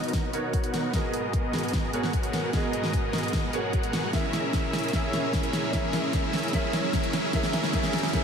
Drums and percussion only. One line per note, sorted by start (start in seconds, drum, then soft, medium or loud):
0.04 closed hi-hat soft
0.08 closed hi-hat medium
0.13 kick medium
0.13 snare medium
0.13 closed hi-hat medium
0.33 closed hi-hat medium
0.53 kick loud
0.53 closed hi-hat medium
0.64 closed hi-hat medium
0.74 snare medium
0.74 closed hi-hat medium
0.93 kick medium
0.93 snare medium
0.93 closed hi-hat medium
1.14 closed hi-hat medium
1.33 kick medium
1.33 closed hi-hat medium
1.53 snare medium
1.53 closed hi-hat soft
1.58 closed hi-hat medium
1.63 closed hi-hat soft
1.68 closed hi-hat medium
1.73 kick medium
1.73 snare medium
1.73 closed hi-hat medium
1.93 closed hi-hat medium
2.03 snare medium
2.13 kick loud
2.13 closed hi-hat medium
2.23 closed hi-hat medium
2.33 snare medium
2.33 closed hi-hat medium
2.53 kick medium
2.53 snare medium
2.53 closed hi-hat medium
2.73 closed hi-hat medium
2.83 snare medium
2.93 kick medium
2.93 closed hi-hat medium
3.13 snare medium
3.13 closed hi-hat soft
3.18 closed hi-hat medium
3.23 closed hi-hat soft
3.28 closed hi-hat medium
3.33 kick medium
3.33 snare medium
3.33 closed hi-hat medium
3.53 closed hi-hat medium
3.73 kick medium
3.73 closed hi-hat medium
3.83 closed hi-hat medium
3.93 snare medium
3.93 closed hi-hat medium
4.13 kick medium
4.13 snare medium
4.13 closed hi-hat medium
4.33 snare medium
4.33 closed hi-hat medium
4.53 kick medium
4.53 snare medium
4.53 closed hi-hat medium
4.73 snare medium
4.73 closed hi-hat soft
4.78 closed hi-hat medium
4.83 closed hi-hat soft
4.88 closed hi-hat medium
4.93 kick loud
4.93 snare medium
4.93 closed hi-hat medium
5.13 snare medium
5.13 closed hi-hat medium
5.33 kick loud
5.33 snare medium
5.33 closed hi-hat medium
5.43 closed hi-hat medium
5.53 snare medium
5.53 closed hi-hat medium
5.73 kick medium
5.73 snare medium
5.73 closed hi-hat medium
5.93 snare medium
5.93 closed hi-hat medium
6.13 kick loud
6.13 snare medium
6.13 closed hi-hat medium
6.33 snare medium
6.33 closed hi-hat soft
6.38 closed hi-hat medium
6.43 closed hi-hat soft
6.48 closed hi-hat medium
6.53 kick medium
6.53 snare medium
6.53 closed hi-hat medium
6.73 snare medium
6.73 closed hi-hat medium
6.93 kick loud
6.93 snare medium
6.93 closed hi-hat medium
7.03 closed hi-hat medium
7.13 snare medium
7.13 closed hi-hat medium
7.33 kick loud
7.33 snare medium
7.33 closed hi-hat medium
7.43 snare medium
7.53 snare medium
7.53 closed hi-hat medium
7.64 snare medium
7.73 kick loud
7.73 snare medium
7.73 closed hi-hat medium
7.83 snare medium
7.93 snare medium
7.93 closed hi-hat soft
7.98 closed hi-hat medium
8.03 snare medium
8.03 closed hi-hat soft
8.08 closed hi-hat medium
8.13 kick loud
8.13 snare medium
8.13 closed hi-hat medium